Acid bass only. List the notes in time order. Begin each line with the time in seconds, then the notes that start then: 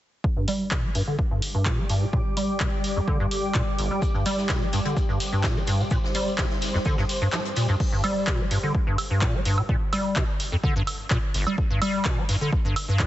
0.36 G2
0.48 G3
0.71 A#2
0.84 G3
0.95 G2
1.07 D3
1.31 G2
1.55 G2
1.66 A#2
1.78 G3
1.90 G2
2.02 A#2
2.13 A#2
2.37 G3
2.60 A#2
2.96 F2
3.08 D3
3.20 G2
3.55 A#2
3.79 G1
3.91 G3
4.14 G2
4.26 G3
4.49 A#2
4.62 G3
4.73 G2
4.85 D3
5.09 G2
5.33 G2
5.44 A#2
5.56 G3
5.68 G2
5.80 A#2
5.91 A#2
6.15 G3
6.38 A#2
6.74 F2
6.86 D3
6.98 G2
7.22 G2
7.33 F3
7.57 A#2
7.69 G2
7.92 G2
8.04 G3
8.27 A#2
8.40 G3
8.51 G2
8.63 D3
8.87 G2
9.11 G2
9.22 A#2
9.34 G3
9.46 G2
9.58 A#2
9.69 A#2
9.93 G3
10.16 A#2
10.52 F2
10.64 D3
10.76 G2
11.11 A#2
11.34 G1
11.47 G3
11.70 G2
11.82 G3
12.05 A#2
12.18 G3
12.29 G2
12.41 D3
12.65 G2
12.88 G2
13.00 A#2